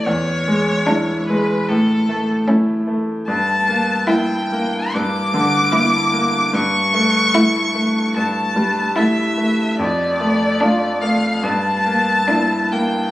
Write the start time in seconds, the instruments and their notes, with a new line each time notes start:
0.05 grand piano E2, violin C#5
0.48 grand piano G#3
0.87 cello G#3, violin D4, grand piano E4
1.27 grand piano G#3, violin B4
1.68 grand piano A2, violin A4
2.09 grand piano A3
2.48 cello A3, violin C#4, grand piano E4
2.87 grand piano A3
3.27 grand piano G2, violin A5
3.68 grand piano A#3
4.07 cello A#3, violin E4 G5, grand piano E4
4.52 grand piano A#3
4.92 grand piano G2, violin D6
5.34 grand piano D3
5.72 cello A#3, violin E4, grand piano E4
6.12 grand piano A#3
6.53 grand piano G2, violin C#6
6.93 grand piano A3
7.35 cello A3, violin E4, grand piano E4
7.75 grand piano A3
8.16 grand piano G2, violin A5
8.56 grand piano G3
8.96 cello A3, violin E4 E5, grand piano E4
9.37 grand piano A3
9.79 grand piano F2, violin D5
10.20 grand piano A3
10.61 cello A3, violin D4, grand piano F4
11.02 grand piano A3, violin F5
11.43 grand piano G2, violin A5
11.86 grand piano A#3
12.28 cello A#3, violin D4, grand piano E4
12.72 grand piano A#3, violin G5